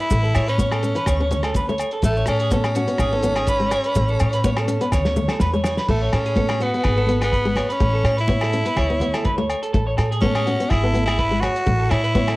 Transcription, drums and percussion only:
0.00 closed hi-hat
0.10 kick, closed hi-hat, muted conga, maracas
0.24 maracas
0.34 cross-stick, closed hi-hat, muted conga, low agogo, maracas
0.48 closed hi-hat
0.58 kick, closed hi-hat, high conga, maracas
0.71 cross-stick, low agogo, maracas
0.83 closed hi-hat, muted conga, maracas
0.96 closed hi-hat
1.06 kick, cross-stick, closed hi-hat, muted conga, low conga, low agogo, maracas
1.31 closed hi-hat, high conga, low conga, maracas
1.43 cross-stick, closed hi-hat, low agogo
1.54 kick, closed hi-hat, high conga, maracas
1.69 maracas
1.78 closed hi-hat, low agogo, maracas
1.91 closed hi-hat
2.02 kick, closed hi-hat, maracas
2.17 maracas
2.26 cross-stick, closed hi-hat, muted conga, low agogo, maracas
2.40 closed hi-hat
2.50 kick, closed hi-hat, high conga, maracas
2.64 cross-stick, low agogo, maracas
2.75 closed hi-hat, muted conga, maracas
2.88 closed hi-hat
2.98 kick, cross-stick, closed hi-hat, muted conga, low agogo, maracas
3.23 closed hi-hat, high conga, maracas
3.36 cross-stick, closed hi-hat, low agogo
3.47 kick, closed hi-hat, maracas
3.61 maracas
3.71 cross-stick, closed hi-hat, low agogo, maracas
3.84 closed hi-hat
3.95 kick, closed hi-hat, maracas
4.08 maracas
4.19 closed hi-hat, muted conga, low agogo, maracas
4.33 closed hi-hat, maracas
4.44 kick, closed hi-hat, high conga, maracas
4.56 cross-stick, low agogo, maracas
4.68 closed hi-hat, muted conga, maracas
4.81 closed hi-hat, maracas
4.92 kick, snare, muted conga, low conga, low agogo, maracas
5.05 snare, maracas
5.16 high conga, low conga, maracas
5.28 snare, low agogo, maracas
5.40 kick, snare, high conga, maracas
5.54 maracas
5.64 snare, low agogo, maracas
5.77 snare, maracas
5.88 kick, crash
6.12 cross-stick, closed hi-hat, muted conga, low agogo
6.26 closed hi-hat
6.36 kick, closed hi-hat, high conga
6.49 cross-stick, low agogo
6.60 closed hi-hat, muted conga
6.74 closed hi-hat
6.84 kick, cross-stick, closed hi-hat, muted conga, low agogo
7.07 closed hi-hat, high conga
7.22 cross-stick, closed hi-hat, low agogo
7.33 kick, closed hi-hat
7.56 cross-stick, closed hi-hat, high conga, low agogo
7.70 closed hi-hat
7.80 kick, closed hi-hat, muted conga
8.05 cross-stick, closed hi-hat, low agogo
8.18 closed hi-hat
8.28 kick, closed hi-hat, high conga
8.41 cross-stick, low agogo
8.53 closed hi-hat
8.66 closed hi-hat
8.77 kick, cross-stick, closed hi-hat, muted conga, low conga, low agogo
9.00 closed hi-hat, high conga, low conga
9.14 cross-stick, closed hi-hat, low agogo
9.24 kick, closed hi-hat, high conga
9.49 closed hi-hat, low agogo
9.63 closed hi-hat
9.74 kick, closed hi-hat
9.98 cross-stick, closed hi-hat, muted conga, low agogo
10.12 closed hi-hat
10.21 kick, closed hi-hat, high conga
10.35 cross-stick, low agogo
10.47 closed hi-hat
10.60 closed hi-hat
10.70 kick, cross-stick, closed hi-hat, muted conga, low agogo
10.94 closed hi-hat, high conga
11.08 cross-stick, closed hi-hat, low agogo
11.19 kick, closed hi-hat
11.42 cross-stick, closed hi-hat, high conga, low agogo
11.56 closed hi-hat
11.67 kick, closed hi-hat
11.91 cross-stick, closed hi-hat, muted conga, low agogo
12.04 closed hi-hat
12.15 kick, closed hi-hat, high conga
12.28 cross-stick, low agogo

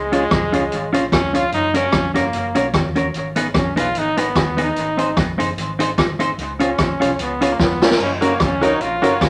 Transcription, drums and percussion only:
0.13 closed hi-hat
0.31 kick, cross-stick, closed hi-hat
0.54 closed hi-hat
0.72 closed hi-hat
0.94 closed hi-hat
1.12 kick, cross-stick, closed hi-hat
1.35 closed hi-hat
1.52 closed hi-hat
1.74 closed hi-hat
1.92 kick, cross-stick, closed hi-hat
2.15 cross-stick, closed hi-hat
2.33 closed hi-hat
2.55 closed hi-hat
2.73 kick, cross-stick, closed hi-hat
2.96 closed hi-hat
3.14 closed hi-hat
3.36 closed hi-hat
3.54 kick, cross-stick, closed hi-hat
3.77 closed hi-hat
3.95 closed hi-hat
4.17 closed hi-hat
4.36 kick, cross-stick, closed hi-hat
4.58 closed hi-hat
4.76 closed hi-hat
4.99 closed hi-hat
5.17 kick, cross-stick, closed hi-hat
5.40 closed hi-hat
5.58 closed hi-hat
5.80 closed hi-hat
5.98 kick, cross-stick, closed hi-hat
6.20 closed hi-hat
6.39 closed hi-hat
6.60 closed hi-hat
6.78 kick, cross-stick, closed hi-hat
7.02 cross-stick, closed hi-hat
7.19 closed hi-hat
7.42 closed hi-hat
7.59 kick, snare
7.82 snare
7.91 snare
8.00 crash
8.22 closed hi-hat
8.40 kick, cross-stick, closed hi-hat
8.63 closed hi-hat
8.81 closed hi-hat
9.04 closed hi-hat
9.21 kick, cross-stick, closed hi-hat

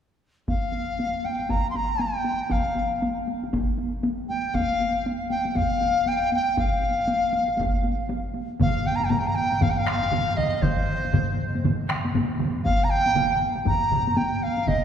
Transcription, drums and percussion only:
0.48 taiko, taiko high
0.64 taiko high
0.73 taiko high
0.89 taiko high
0.99 taiko high
1.15 taiko high
1.25 taiko high
1.39 taiko high
1.49 taiko, taiko high
1.64 taiko high
1.74 taiko high
1.90 taiko high
1.99 taiko high
2.16 taiko high
2.24 taiko high
2.40 taiko high
2.50 taiko, taiko high
2.75 taiko high
2.91 taiko high
3.02 taiko high
3.17 taiko high
3.28 taiko high
3.44 taiko high
3.53 taiko, taiko high
3.69 taiko high
3.78 taiko high
3.93 taiko high
4.04 taiko high
4.20 taiko high
4.30 taiko high
4.46 taiko high
4.54 taiko, taiko high
4.71 taiko high
4.80 taiko high
4.96 taiko high
5.07 taiko high
5.21 taiko high
5.30 taiko high
5.45 taiko high
5.55 taiko, taiko high
5.71 taiko high
5.81 taiko high
5.96 taiko high
6.06 taiko high
6.23 taiko high
6.32 taiko high
6.48 taiko high
6.57 taiko, taiko high
6.73 taiko high
6.82 taiko high
6.98 taiko high
7.08 taiko high
7.33 taiko high
7.48 taiko high
7.58 taiko, taiko high
7.74 taiko high
7.83 taiko high
7.99 taiko high
8.09 taiko high
8.25 taiko high
8.34 taiko high
8.50 taiko high
8.60 taiko, taiko low-mid, taiko mid, taiko high
9.00 taiko high
9.10 taiko low-mid, taiko mid, taiko high
9.52 taiko high
9.61 taiko, taiko low-mid, taiko mid, taiko high
9.86 taiko rim
10.03 taiko high
10.12 taiko low-mid, taiko mid, taiko high
10.38 taiko low-mid, taiko mid
10.54 taiko high
10.62 taiko, taiko low-mid, taiko mid, taiko high
11.05 taiko high
11.13 taiko low-mid, taiko mid, taiko high
11.55 taiko high
11.64 taiko low-mid, taiko mid, taiko high
11.89 taiko rim
12.05 taiko high
12.15 taiko low-mid, taiko mid, taiko high
12.40 taiko low-mid, taiko mid
12.55 taiko high
12.65 taiko, taiko high
13.06 taiko high
13.15 taiko low-mid, taiko mid, taiko high
13.56 taiko high
13.65 taiko, taiko low-mid, taiko mid, taiko high
13.92 taiko low-mid, taiko mid
14.07 taiko high
14.17 taiko high
14.57 taiko high
14.67 taiko, taiko low-mid, taiko mid, taiko high

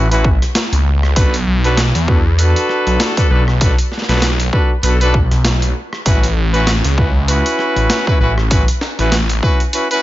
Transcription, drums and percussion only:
0.12 closed hi-hat
0.24 kick
0.42 cross-stick, closed hi-hat
0.55 snare, closed hi-hat
0.73 closed hi-hat
1.03 cross-stick
1.16 kick, closed hi-hat
1.34 closed hi-hat
1.64 closed hi-hat
1.77 snare, closed hi-hat
1.95 closed hi-hat
2.08 kick
2.39 closed hi-hat
2.56 closed hi-hat
2.69 cross-stick
2.87 closed hi-hat
3.00 snare, closed hi-hat
3.17 kick, closed hi-hat
3.48 cross-stick
3.61 kick, closed hi-hat
3.78 closed hi-hat
3.92 snare
3.98 snare
4.02 snare
4.09 snare, closed hi-hat
4.12 snare
4.18 snare
4.22 snare, closed hi-hat
4.40 closed hi-hat
4.53 kick
4.83 closed hi-hat
5.01 closed hi-hat
5.14 kick
5.31 cross-stick, closed hi-hat
5.45 snare, closed hi-hat
5.62 closed hi-hat
5.93 cross-stick
6.06 kick, closed hi-hat
6.23 closed hi-hat
6.54 closed hi-hat
6.67 snare, closed hi-hat
6.84 closed hi-hat
6.98 kick
7.28 closed hi-hat
7.46 closed hi-hat
7.59 cross-stick
7.76 closed hi-hat
7.90 snare, closed hi-hat
8.07 kick
8.38 cross-stick
8.51 kick, closed hi-hat
8.68 closed hi-hat
8.81 snare
8.99 closed hi-hat
9.12 snare, closed hi-hat
9.29 closed hi-hat
9.43 kick
9.60 closed hi-hat
9.73 closed hi-hat
9.91 closed hi-hat

